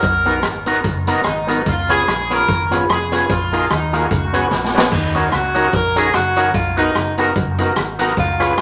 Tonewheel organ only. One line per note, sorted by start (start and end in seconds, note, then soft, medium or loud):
0.26 0.39 B3 medium
0.26 0.40 D#4 medium
0.26 0.40 F#4 medium
0.26 0.40 A#4 medium
0.67 0.80 B3 medium
0.67 0.80 D#4 medium
0.67 0.81 F#4 medium
0.67 0.81 A#4 loud
1.07 1.21 B3 medium
1.07 1.21 D#4 medium
1.07 1.21 F#4 medium
1.07 1.21 A#4 loud
1.48 1.62 B3 medium
1.48 1.62 D#4 medium
1.48 1.62 F#4 medium
1.48 1.62 A#4 medium
1.89 2.02 B3 medium
1.89 2.03 C#4 medium
1.89 2.03 F4 medium
1.89 2.03 G#4 loud
2.30 2.43 B3 medium
2.30 2.43 C#4 medium
2.30 2.44 F4 medium
2.30 2.44 G#4 medium
2.71 2.84 B3 medium
2.71 2.84 C#4 medium
2.71 2.85 F4 medium
2.71 2.85 G#4 loud
3.12 3.25 B3 medium
3.12 3.25 C#4 medium
3.12 3.25 F4 medium
3.12 3.25 G#4 medium
3.52 3.65 A#3 medium
3.52 3.66 D#4 medium
3.52 3.66 F4 medium
3.52 3.66 G#4 medium
3.93 4.06 A#3 medium
3.93 4.06 D#4 medium
3.93 4.07 F4 medium
3.93 4.07 G#4 medium
4.33 4.47 B3 medium
4.33 4.47 C#4 medium
4.33 4.47 F#4 medium
4.33 4.47 G#4 loud
4.74 4.87 B3 medium
4.74 4.87 C#4 medium
4.74 4.88 F#4 medium
4.74 4.88 G#4 loud
5.14 5.28 C#4 medium
5.14 5.28 D#4 medium
5.14 5.28 F#4 medium
5.14 5.29 A#4 loud
5.54 5.68 C#4 medium
5.54 5.69 D#4 medium
5.54 5.69 F#4 medium
5.54 5.69 A#4 medium
5.96 6.10 C#4 medium
5.96 6.10 D#4 medium
5.96 6.10 F#4 medium
5.96 6.10 A#4 loud
6.36 6.50 C#4 medium
6.36 6.50 D#4 medium
6.36 6.50 F#4 medium
6.36 6.51 A#4 loud
6.77 6.91 B3 medium
6.77 6.91 D#4 medium
6.77 6.91 F#4 medium
6.77 6.91 A#4 loud
7.18 7.32 B3 medium
7.18 7.32 D#4 medium
7.18 7.32 F#4 medium
7.18 7.32 A#4 loud
7.58 7.72 B3 loud
7.58 7.72 D#4 medium
7.58 7.73 F#4 medium
7.58 7.73 A#4 loud
7.99 8.13 B3 medium
7.99 8.13 D#4 medium
7.99 8.13 F#4 medium
7.99 8.13 A#4 loud
8.40 8.54 C#4 medium
8.40 8.54 F4 medium
8.40 8.54 G#4 medium
8.40 8.54 B4 loud